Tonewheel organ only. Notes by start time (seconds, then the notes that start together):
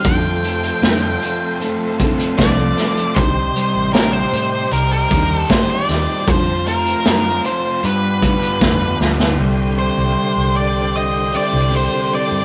Already playing: C5
0.06 A3 C4 F4 A4
3.17 G3 D#4 G4
6.28 F3 F4 A5
7.83 B3 D4 G4 B4
9.38 D3 G3 C4 G4 C5